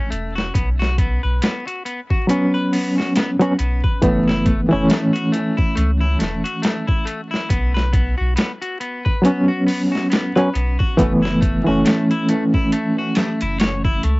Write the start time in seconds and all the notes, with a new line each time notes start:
0.10 E1 A3, closed hi-hat
0.35 F#4, snare
0.54 B1 B3, kick, closed hi-hat
0.79 F#4, snare
0.98 B3, kick, closed hi-hat
1.23 B1 B4
1.42 B3, snare, closed hi-hat
1.67 F#4, closed hi-hat
1.85 B3, closed hi-hat
2.10 F#4, kick
2.27 F#3 B3 C#4, closed hi-hat
2.54 B4
2.73 B3, open hi-hat
2.98 F#4, snare
3.16 B3, snare, closed hi-hat
3.39 F#3 B3 C#4 F#4, closed hi-hat
3.59 B1 B3, closed hi-hat
3.84 B4, kick
4.02 F#1 E3 A3 B3, kick, closed hi-hat
4.28 E4, snare
4.45 A3, kick, closed hi-hat
4.69 F#1 E3 A3 E4
4.73 C#4
4.88 A3, snare, closed hi-hat
5.13 F#4, closed hi-hat
5.32 A3, closed hi-hat
5.57 E4, kick
5.75 C#2 A3, closed hi-hat
6.00 E4
6.19 E1 A3, snare, closed hi-hat
6.44 F#4, closed hi-hat
6.62 A3, snare, closed hi-hat
6.87 E4, kick
7.05 A3, closed hi-hat
7.31 E4, snare
7.49 B1 B3, kick, closed hi-hat
7.74 B4, snare
7.93 B3, kick, closed hi-hat
8.18 B1 F#4
8.36 B3, snare, closed hi-hat
8.61 F#4, closed hi-hat
8.80 B3, closed hi-hat
9.05 B4, kick
9.22 F#3 B3 C#4, closed hi-hat
9.48 F#4
9.67 B3, open hi-hat
9.92 F#4, snare
10.10 B3, snare, closed hi-hat
10.36 F#3 B3 C#4 B4, closed hi-hat
10.54 B1 B3, closed hi-hat
10.79 F#4, kick
10.97 F#1 E3 A3 B3, kick, closed hi-hat
11.22 E4, snare
11.41 A3, kick, closed hi-hat
11.65 F#1 E3 A3 C#4 F#4
11.85 A3, snare, closed hi-hat
12.11 E4, closed hi-hat
12.29 A3, closed hi-hat
12.54 E4, kick
12.72 A3, closed hi-hat
12.98 F#4
13.15 A3, snare, closed hi-hat
13.41 F#1 E4, closed hi-hat
13.60 C#5, snare, closed hi-hat
13.85 E4, kick
14.03 C#2 A3, closed hi-hat